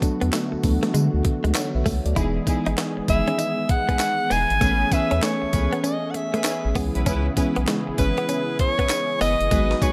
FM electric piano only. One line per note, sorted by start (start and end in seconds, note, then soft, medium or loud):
0.00 0.02 F#3 medium
0.00 0.47 F#3 loud
0.00 0.02 A3 medium
0.00 0.48 A3 medium
0.00 0.03 B3 medium
0.00 0.48 B3 medium
0.00 0.03 D4 medium
0.00 0.48 D4 medium
0.00 0.03 A4 loud
0.00 0.48 A4 loud
0.63 0.72 E3 medium
0.63 1.50 A3 medium
0.63 1.50 B3 medium
0.63 1.50 D4 medium
0.63 1.25 A4 loud
0.70 1.53 F#3 medium
1.56 1.74 C#5 medium
1.56 1.74 F#5 medium
1.75 2.04 B4 medium
1.75 2.04 E5 medium
2.06 2.35 A4 medium
2.06 2.35 D5 medium
2.16 2.40 E3 medium
2.16 2.40 G#3 medium
2.16 2.40 B3 medium
2.16 2.40 D#4 medium
2.16 2.41 G#4 loud
2.47 2.92 E3 loud
2.47 2.92 G#3 medium
2.47 2.92 B3 medium
2.47 2.93 D#4 medium
2.47 2.93 G#4 loud
3.08 3.95 D#3 medium
3.08 3.95 E3 medium
3.08 3.95 G#3 medium
3.08 3.95 B3 medium
3.08 3.95 G#4 medium
4.60 4.85 E3 medium
4.60 4.85 A3 medium
4.60 4.85 B3 medium
4.60 4.85 C#4 medium
4.60 4.85 G#4 medium
4.91 5.37 E3 medium
4.91 5.37 A3 medium
4.91 5.37 B3 medium
4.91 5.38 C#4 medium
4.91 5.38 G#4 medium
5.53 6.39 E3 medium
5.53 6.40 A3 medium
5.53 6.40 B3 medium
5.53 6.40 C#4 medium
5.53 6.40 G#4 medium
6.75 7.28 E3 medium
6.75 7.28 G#3 medium
6.75 7.28 B3 medium
6.75 7.28 C#4 medium
6.75 7.28 G#4 loud
7.36 7.82 E3 medium
7.36 7.82 G#3 medium
7.36 7.82 B3 medium
7.36 7.83 C#4 medium
7.36 7.83 G#4 loud
7.97 8.84 E3 medium
7.97 8.84 G#3 medium
7.97 8.85 B3 medium
7.97 8.85 C#4 medium
7.97 8.85 G#4 medium
9.51 9.75 F#3 medium
9.51 9.75 G#3 medium
9.51 9.75 B3 medium
9.51 9.75 D#4 medium
9.51 9.75 G#4 medium
9.82 9.93 F#3 medium
9.82 9.93 G#3 medium
9.82 9.93 B3 medium
9.82 9.93 D#4 medium
9.82 9.93 G#4 medium